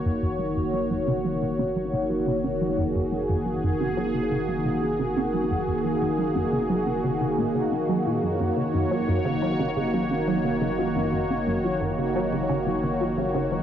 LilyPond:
<<
  \new Staff \with { instrumentName = "Analog synth pad" } { \time 4/4 \key ges \major \tempo 4 = 88 << { des''1 | aes'1~ | aes'1 | des''1~ |
des''1 | } \\ { <ees bes ges'>1~ | <ees bes ges'>1~ | <ees bes ges'>1~ | <ees bes ges'>1~ |
<ees bes ges'>1 | } >> }
  \new Staff \with { instrumentName = "Synth arpeggio sound" } { \time 4/4 \key ges \major r16 des'16 ges16 des'16 ees16 r8 ges16 des'16 ees16 r16 des'16 ges16 des'16 ees16 bes16 | des'16 ges16 des'16 ees16 bes16 des'16 ges16 des'16 ees16 bes16 des'16 ges16 des'16 ees16 bes16 des'16 | ges16 des'16 ees16 bes16 des'16 ges16 des'16 ees16 bes16 des'16 ges'16 des'16 bes16 ges16 bes16 bes16 | des'16 ees16 bes16 bes16 ges16 des'16 ees16 bes16 bes16 ges16 des'16 ees16 bes16 bes16 ges16 des'16 |
ees16 bes16 bes16 ges16 des'16 ees16 bes16 bes16 ges16 des'16 ees16 bes16 bes16 ges16 des'16 ees16 | }
  \new Staff \with { instrumentName = "Synth arpeggio sound" } { \clef bass \time 4/4 \key ges \major ges,16 ges,16 ges16 ges,16 ges16 ges,16 des16 ges16 des16 des16 ges16 des16 ges16 des16 des16 ges16 | ges,16 ges,16 ges16 ges,16 ges16 ges,16 des16 ges16 des16 des16 ges16 des16 ges16 des16 des16 ges16 | ges,16 ges,16 ges16 ges,16 ges16 ges,16 des16 ges16 des16 des16 des16 bes,16 des16 des16 ges16 bes,16 | ges,16 ges,16 des16 ges,16 ges16 ges,16 des16 ges16 des16 des16 ges16 des16 ges16 des16 des16 ges16 |
ges,16 ges,16 des16 ges,16 ges16 ges,16 des16 ges16 des16 des16 ges16 des16 ges16 des16 des16 ges16 | }
  \new Staff \with { instrumentName = "Analog synth bass" } { \clef bass \time 4/4 \key ges \major ges,,1~ | ges,,1~ | ges,,1 | ges,,1~ |
ges,,1 | }
>>